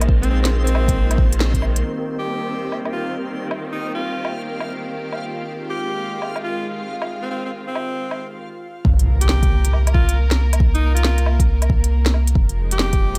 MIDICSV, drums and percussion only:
0, 0, Header, 1, 2, 480
1, 0, Start_track
1, 0, Key_signature, -3, "minor"
1, 0, Tempo, 437956
1, 101, Time_signature, 4, 2, 24, 8
1, 14450, End_track
2, 0, Start_track
2, 0, Title_t, "Drums"
2, 16, Note_on_c, 9, 42, 57
2, 16, Note_on_c, 9, 77, 67
2, 94, Note_on_c, 9, 36, 118
2, 126, Note_off_c, 9, 42, 0
2, 126, Note_off_c, 9, 77, 0
2, 204, Note_off_c, 9, 36, 0
2, 256, Note_on_c, 9, 42, 33
2, 365, Note_off_c, 9, 42, 0
2, 494, Note_on_c, 9, 38, 101
2, 494, Note_on_c, 9, 42, 58
2, 603, Note_off_c, 9, 38, 0
2, 603, Note_off_c, 9, 42, 0
2, 736, Note_on_c, 9, 42, 45
2, 822, Note_on_c, 9, 77, 70
2, 845, Note_off_c, 9, 42, 0
2, 932, Note_off_c, 9, 77, 0
2, 967, Note_on_c, 9, 36, 101
2, 973, Note_on_c, 9, 42, 56
2, 1076, Note_off_c, 9, 36, 0
2, 1082, Note_off_c, 9, 42, 0
2, 1214, Note_on_c, 9, 42, 47
2, 1214, Note_on_c, 9, 77, 56
2, 1295, Note_on_c, 9, 36, 104
2, 1324, Note_off_c, 9, 42, 0
2, 1324, Note_off_c, 9, 77, 0
2, 1405, Note_off_c, 9, 36, 0
2, 1453, Note_on_c, 9, 42, 57
2, 1539, Note_on_c, 9, 38, 100
2, 1562, Note_off_c, 9, 42, 0
2, 1649, Note_off_c, 9, 38, 0
2, 1687, Note_on_c, 9, 36, 58
2, 1695, Note_on_c, 9, 42, 31
2, 1777, Note_on_c, 9, 77, 42
2, 1796, Note_off_c, 9, 36, 0
2, 1805, Note_off_c, 9, 42, 0
2, 1887, Note_off_c, 9, 77, 0
2, 1931, Note_on_c, 9, 42, 57
2, 2041, Note_off_c, 9, 42, 0
2, 2983, Note_on_c, 9, 77, 33
2, 3092, Note_off_c, 9, 77, 0
2, 3128, Note_on_c, 9, 77, 47
2, 3238, Note_off_c, 9, 77, 0
2, 3847, Note_on_c, 9, 77, 61
2, 3957, Note_off_c, 9, 77, 0
2, 4655, Note_on_c, 9, 77, 60
2, 4765, Note_off_c, 9, 77, 0
2, 5046, Note_on_c, 9, 77, 46
2, 5156, Note_off_c, 9, 77, 0
2, 5616, Note_on_c, 9, 77, 34
2, 5726, Note_off_c, 9, 77, 0
2, 6816, Note_on_c, 9, 77, 33
2, 6926, Note_off_c, 9, 77, 0
2, 6967, Note_on_c, 9, 77, 47
2, 7077, Note_off_c, 9, 77, 0
2, 7691, Note_on_c, 9, 77, 57
2, 7800, Note_off_c, 9, 77, 0
2, 8499, Note_on_c, 9, 77, 56
2, 8609, Note_off_c, 9, 77, 0
2, 8891, Note_on_c, 9, 77, 45
2, 9001, Note_off_c, 9, 77, 0
2, 9698, Note_on_c, 9, 36, 124
2, 9808, Note_off_c, 9, 36, 0
2, 9857, Note_on_c, 9, 42, 33
2, 9967, Note_off_c, 9, 42, 0
2, 10097, Note_on_c, 9, 42, 58
2, 10182, Note_on_c, 9, 38, 105
2, 10206, Note_off_c, 9, 42, 0
2, 10292, Note_off_c, 9, 38, 0
2, 10331, Note_on_c, 9, 36, 105
2, 10333, Note_on_c, 9, 42, 47
2, 10441, Note_off_c, 9, 36, 0
2, 10443, Note_off_c, 9, 42, 0
2, 10572, Note_on_c, 9, 42, 58
2, 10668, Note_on_c, 9, 77, 39
2, 10682, Note_off_c, 9, 42, 0
2, 10777, Note_off_c, 9, 77, 0
2, 10819, Note_on_c, 9, 42, 48
2, 10819, Note_on_c, 9, 77, 56
2, 10900, Note_on_c, 9, 36, 107
2, 10928, Note_off_c, 9, 42, 0
2, 10928, Note_off_c, 9, 77, 0
2, 11010, Note_off_c, 9, 36, 0
2, 11057, Note_on_c, 9, 42, 60
2, 11166, Note_off_c, 9, 42, 0
2, 11302, Note_on_c, 9, 38, 101
2, 11302, Note_on_c, 9, 42, 32
2, 11411, Note_off_c, 9, 38, 0
2, 11411, Note_off_c, 9, 42, 0
2, 11541, Note_on_c, 9, 42, 59
2, 11541, Note_on_c, 9, 77, 70
2, 11619, Note_on_c, 9, 36, 121
2, 11650, Note_off_c, 9, 42, 0
2, 11650, Note_off_c, 9, 77, 0
2, 11729, Note_off_c, 9, 36, 0
2, 11779, Note_on_c, 9, 42, 33
2, 11889, Note_off_c, 9, 42, 0
2, 12019, Note_on_c, 9, 42, 57
2, 12105, Note_on_c, 9, 38, 112
2, 12129, Note_off_c, 9, 42, 0
2, 12215, Note_off_c, 9, 38, 0
2, 12253, Note_on_c, 9, 42, 44
2, 12344, Note_on_c, 9, 77, 69
2, 12363, Note_off_c, 9, 42, 0
2, 12454, Note_off_c, 9, 77, 0
2, 12490, Note_on_c, 9, 36, 111
2, 12494, Note_on_c, 9, 42, 58
2, 12600, Note_off_c, 9, 36, 0
2, 12603, Note_off_c, 9, 42, 0
2, 12735, Note_on_c, 9, 42, 46
2, 12735, Note_on_c, 9, 77, 52
2, 12820, Note_on_c, 9, 36, 109
2, 12845, Note_off_c, 9, 42, 0
2, 12845, Note_off_c, 9, 77, 0
2, 12929, Note_off_c, 9, 36, 0
2, 12976, Note_on_c, 9, 42, 57
2, 13086, Note_off_c, 9, 42, 0
2, 13216, Note_on_c, 9, 38, 103
2, 13216, Note_on_c, 9, 42, 32
2, 13304, Note_on_c, 9, 77, 37
2, 13326, Note_off_c, 9, 38, 0
2, 13326, Note_off_c, 9, 42, 0
2, 13413, Note_off_c, 9, 77, 0
2, 13453, Note_on_c, 9, 42, 58
2, 13540, Note_on_c, 9, 36, 124
2, 13563, Note_off_c, 9, 42, 0
2, 13650, Note_off_c, 9, 36, 0
2, 13693, Note_on_c, 9, 42, 32
2, 13802, Note_off_c, 9, 42, 0
2, 13934, Note_on_c, 9, 42, 58
2, 14021, Note_on_c, 9, 38, 115
2, 14044, Note_off_c, 9, 42, 0
2, 14131, Note_off_c, 9, 38, 0
2, 14169, Note_on_c, 9, 42, 44
2, 14172, Note_on_c, 9, 36, 110
2, 14279, Note_off_c, 9, 42, 0
2, 14281, Note_off_c, 9, 36, 0
2, 14414, Note_on_c, 9, 42, 58
2, 14450, Note_off_c, 9, 42, 0
2, 14450, End_track
0, 0, End_of_file